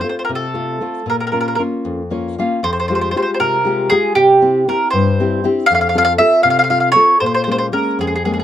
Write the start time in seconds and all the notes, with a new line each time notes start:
0.01 A3 C4 F4 C5
0.09 C5
0.19 C5
0.25 A#4
0.29 C3
0.35 A4
0.54 A3 C4 F4
0.81 A3 C4 F4
1.06 A#2 A#4
1.20 A#4
1.27 A#4
1.32 A#3 C#4 F4 A#4
1.41 A#4
1.48 A#4
1.55 A#3 A#4
1.60 C#4 F4
1.85 F2
2.10 A#3 C#4 F4 C#5
2.38 A#3 C#4 F4 F5
2.63 F2 C5
2.73 C5
2.80 C5
2.88 G#3 F4 G4 C5
2.95 C5
3.01 C5
3.11 C5
3.16 G#3 F4 G4 C5
3.22 C5
3.34 C5
3.40 C3 A#4
3.65 G#3 F4 G4
3.90 G#3 F4 G4 G#4
4.15 C3 G4
4.42 C4 E4 G4
4.68 C4 E4 G4 A#4
4.91 G2 C5
5.20 C4 E4 G4
5.44 C4 E4 G4
5.66 F5
5.70 F2
5.75 F5
5.81 F5
5.89 F5
5.95 C4 F4 A4 F5
6.05 F5
6.18 C4 F4 A4 E5
6.43 C3 F5
6.50 F5
6.59 F5
6.64 F5
6.70 C4 F4 A4 F5
6.80 F5
6.92 C4 F4 C#5
6.96 A4
7.20 A#2 C5
7.26 C5
7.34 C5
7.44 G#3 A#3 C5
7.48 C#4 C5
7.58 C5
7.72 G#3 A#3 C#4 A#4
7.99 F2 G#4
8.07 G#4
8.16 G#4
8.25 G#3 A#3 C#4 G#4
8.34 G#4
8.40 G#4